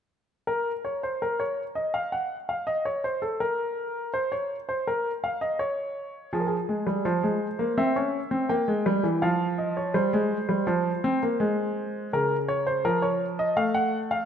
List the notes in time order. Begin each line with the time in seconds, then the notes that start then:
0.47 A#4
0.85 C#5
1.03 C5
1.22 A#4
1.40 C#5
1.75 D#5
1.94 F5
2.12 F#5
2.49 F5
2.67 D#5
2.85 C#5
3.04 C5
3.22 A4
3.40 A#4
4.14 C5
4.32 C#5
4.69 C5
4.87 A#4
5.24 F5
5.41 D#5
5.59 C#5
6.33 F3 G#4
6.40 A#4
6.47 G#4
6.69 G#3
6.87 G3
7.05 F3 C5
7.23 G#3
7.59 A#3
7.78 C4 E5
7.96 C#4
8.31 C4
8.49 A#3 G5
8.68 G#3
8.86 G3
9.03 E3
9.22 F3 F5
9.58 D#5
9.77 C#5
9.94 G3 C5
10.13 G#3
10.49 G3
10.67 F3 C5
11.04 C4
11.23 A#3
11.40 G#3
12.13 C#3 A#4
12.48 C#5
12.67 C5
12.85 F3 A#4
13.02 C#5
13.39 D#5
13.57 A3 F5
13.74 F#5
14.11 F5